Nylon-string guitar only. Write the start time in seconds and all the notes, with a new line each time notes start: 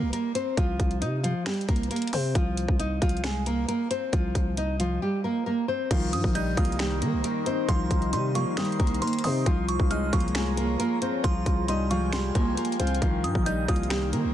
Already playing: A#3 A#4
0.13 A#3 A#4
0.35 C4 C5
0.58 F3 F4
1.01 D#4 D#5
1.23 F3 F4
1.46 G3 G4
1.68 A#3 A#4
1.90 A#3 A#4
2.14 C4 C5
2.35 F3 F4
2.79 D#4 D#5
3.02 F3 F4
3.24 G#3 G#4
3.46 A#3 A#4
3.68 A#3 A#4
3.91 C4 C5
4.12 F3 F4
4.58 D#4 D#5
4.80 F3 F4
5.02 G3 G4
5.24 A#3 A#4
5.46 A#3 A#4
5.68 C4 C5
5.91 F3 F4
6.35 D#4 D#5
6.57 F3 F4
6.79 G3 G4
7.02 A#3 A#4
7.24 A#3 A#4
7.46 C4 C5
7.69 F3 F4
8.13 D#4 D#5
8.35 F3 F4
8.57 G3 G4
8.80 A#3 A#4
9.02 A#3 A#4
9.25 C4 C5
9.46 F3 F4
9.91 D#4 D#5
10.13 F3 F4
10.35 G#3 G#4
10.57 A#3 A#4
10.79 A#3 A#4
11.02 C4 C5
11.24 F3 F4
11.69 D#4 D#5
11.91 F3 F4
12.13 G3 G4
12.35 A#3 A#4
12.57 A#3 A#4
12.79 C4 C5
13.03 F3 F4
13.46 D#4 D#5
13.68 F3 F4
13.90 G3 G4
14.13 A#3 A#4